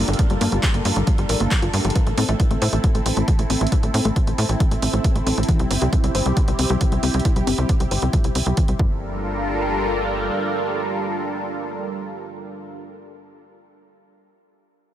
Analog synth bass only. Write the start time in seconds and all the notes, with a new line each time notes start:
0.08 G1
0.30 G1
0.41 G2
0.52 G1
0.74 G1
0.85 G2
0.96 G1
1.18 G1
1.29 A1
1.40 G1
1.63 G1
1.74 G2
1.85 G1
2.07 A1
2.18 A2
2.29 A1
2.51 A1
2.62 A2
2.73 A1
2.95 A1
3.06 A1
3.17 A1
3.39 A1
3.50 A1
3.61 A1
3.83 A1
3.94 A2
4.05 A1
4.27 A1
4.38 A2
4.49 A1
4.71 A1
4.82 A1
4.93 A1
5.16 A1
5.27 A1
5.38 A1
5.60 C2
5.71 G1
5.82 C2
6.04 C2
6.15 G1
6.26 C2
6.48 C2
6.59 C2
6.70 C2
6.92 C2
7.03 C2
7.14 C2
7.36 C2
7.47 G1
7.58 C2
7.80 C2
7.91 G1
8.02 C2
8.25 C2
8.35 C2
8.46 C2
8.69 C2
8.79 G1